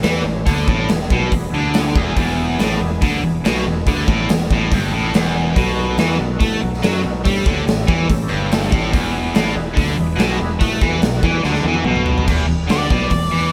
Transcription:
Already playing: A3 C#4 E4 G4
0.03 E2 E3, snare, open hi-hat
0.24 A1 A2
0.45 D2 D3 B3 D4 E4 G#4, kick, open hi-hat
0.67 A1 A2, kick
0.89 E1 E2, snare, open hi-hat
1.10 B1 B2, kick
1.32 E1 E2, kick, open hi-hat
1.54 D2 D3
1.74 snare, open hi-hat
1.95 E1 E2, kick
2.16 E1 E2, kick, open hi-hat
2.58 A1 A2, snare, open hi-hat
2.78 E1 E2
3.01 D2 D3, kick, open hi-hat
3.23 E1 E2
3.45 B1 B2, snare, open hi-hat
3.66 E1 E2
3.85 D2 D3 B3 D4 E4 G#4, kick, open hi-hat
4.08 A1 A2, kick
4.29 E1 E2, snare, open hi-hat
4.50 A1 A2, kick
4.72 G1 G2, kick, open hi-hat
4.93 A1 A2
5.13 E1 E2, snare, open hi-hat
5.54 B1 B2 B3 D#4 F#4 A4, kick, open hi-hat
5.97 E2 E3, snare, open hi-hat
6.19 B1 B2
6.39 A2 A3, kick, open hi-hat
6.60 B1 B2
6.74 snare
6.82 F#2 F#3, snare, open hi-hat
7.03 B1 B2
7.24 G2 G3 C#4 E4 G4 A4, kick, open hi-hat
7.46 D2 D3, kick
7.66 A1 A2, snare, open hi-hat
7.87 E2 E3, kick
8.09 A1 A2, kick, open hi-hat
8.28 G1 G2
8.52 snare, open hi-hat
8.71 A1 A2, kick
8.91 E1 E2 D4 E4 G#4 B4, kick, open hi-hat
9.33 A1 A2, snare, open hi-hat
9.48 snare
9.55 E1 E2
9.73 D2 D3, kick
9.78 open hi-hat
9.96 E1 E2
10.16 B1 B2, snare, open hi-hat
10.39 E1 E2
10.60 A2 A3 D#4 F#4 A4 B4, kick, open hi-hat
10.81 E2 E3, kick
11.02 B1 B2, snare, open hi-hat
11.14 snare
11.23 E2 E3, kick
11.43 D2 D3, snare
11.54 snare
11.63 E2, high tom
11.67 E3
11.74 high tom
11.84 B1 B2, mid tom
11.96 mid tom
12.06 floor tom
12.18 floor tom
12.26 E1 E2 D4 E4 G#4 B4, kick, crash
12.48 E1 E2
12.68 D2 D3 D5, snare, open hi-hat
12.90 B1 B2, kick
13.10 E1 E2, kick, open hi-hat
13.32 E2 E3

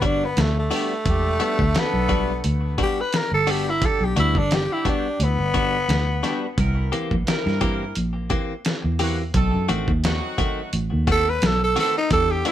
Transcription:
Already playing: G1
0.02 G3 B3 D4 F#4, kick, closed hi-hat
0.25 B3
0.37 D2 A3, snare, closed hi-hat
0.59 A3
0.71 G3 B3 D4 F#4 G4, open hi-hat
1.06 E1 G3 D4 F#4 G4, kick, closed hi-hat
1.40 G3 B3 D4 F#4, closed hi-hat
1.59 D2, kick
1.74 A3 D4 F#4 A4, muted fingered electric bass stroke, snare, closed hi-hat
1.80 B3
1.94 B1
2.09 G3 B3 D4 F#4, kick, closed hi-hat
2.44 D2, closed hi-hat
2.78 G3 B3 D4 F#4, kick, closed hi-hat
2.83 G4
3.01 B4
3.13 A#4, snare, closed hi-hat
3.32 G1 A4
3.46 G3 A3 B3 D4 F#4 G4 A4, open hi-hat
3.70 E4
3.81 G3 D4 F#4 G4, kick, closed hi-hat
3.85 A4
4.01 B1 G4
4.16 D2 G3 B3 D4 E4 F#4, closed hi-hat
4.35 G1 D4, kick
4.49 G3 D4 F#4 G4, snare, closed hi-hat
4.55 G4
4.73 E4
4.85 G3 B3 D4 F#4, kick, closed hi-hat
5.20 D2 B3, closed hi-hat
5.38 G1
5.54 G3 B3 D4 F#4, kick, closed hi-hat
5.89 D2, snare, closed hi-hat
6.22 G3 B3 D4 F#4 G4, snare, closed hi-hat
6.57 C2 A#3 C4 E4 A#4, kick, closed hi-hat
6.92 E3 A#3 C4 G4, closed hi-hat
7.11 A#1, kick
7.25 A#3 C4 E4 A#4, muted fingered electric bass stroke, snare, closed hi-hat
7.46 G2, snare
7.61 E3 A#3 C4 G4, kick, closed hi-hat
7.95 A#1, closed hi-hat
8.30 E3 A#3 C4 G4, kick, closed hi-hat
8.65 snare, closed hi-hat
8.84 E2
8.99 E3 F#3 A#3 C4 E4 F#4 G4, open hi-hat
9.33 B1 A3 C4 D#4 A4, kick, closed hi-hat
9.53 F#2
9.69 A1 D#3 A3 C4 F#4, closed hi-hat
9.88 D#2, kick
10.02 F#3 C4 D#4 F#4, snare, closed hi-hat
10.38 D#3 A3 C4 F#4, kick, closed hi-hat
10.73 A1, closed hi-hat
10.93 D#2
11.07 D#3 A3 C4 F#4, kick, closed hi-hat
11.12 A4
11.30 B4
11.42 B1, snare, closed hi-hat
11.46 A4
11.64 A4
11.75 D#3 A3 C4 D#4 F#4 A4, snare, open hi-hat
11.80 A4
11.98 D#4
12.08 E2 G3 D4 F#4 G4, kick, closed hi-hat
12.13 A4
12.31 G4
12.45 G3 B3 D4 E4 F#4, closed hi-hat

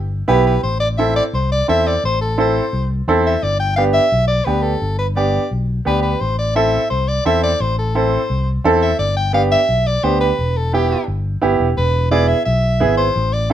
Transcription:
Already playing: G1
0.28 B1 B3 E4 G4 B4
0.47 B4
0.63 A1 C5
0.80 D5
0.97 C4 E4 A4 E5
1.16 D5
1.33 C2 C5
1.52 D5
1.68 E2 C4 E4 A4 E5
1.87 D5
2.04 A1 C5
2.21 A4
2.38 C4 E4 A4 C5
2.73 C2
3.08 E2 C4 E4 A4
3.26 E5
3.43 G1 D5
3.60 G5
3.76 B3 D4 G4 F5
3.93 E5
4.12 B1
4.28 D5
4.45 D2 B3 D4 G4 B4
4.62 A4
4.82 G1
4.99 B4
5.16 B3 D4 G4 D5
5.51 B1
5.85 D2 B3 D4 G4 B4
6.02 B4
6.20 A1 C5
6.39 D5
6.55 C4 E4 A4 E5
6.90 C2 C5
7.08 D5
7.25 E2 C4 E4 A4 E5
7.43 D5
7.60 A1 C5
7.78 A4
7.95 C4 E4 A4 C5
8.30 C2
8.64 E2 C4 E4 A4
8.82 E5
8.99 G1 D5
9.16 G5
9.33 B3 D4 G4 F5
9.51 E5
9.69 B1
9.87 D5
10.03 D2 B3 D4 G4 C5
10.21 B4
10.39 E1
10.57 A4
10.73 B3 E4 G4
11.08 G1
11.42 G1 B3 E4 G4
11.60 E1
11.77 E1 B4
12.11 B3 E4 G#4 D5
12.28 E5
12.45 B1 E5
12.80 G#1 B3 E4 G#4
12.97 C5
13.16 A1
13.33 D5
13.50 C4

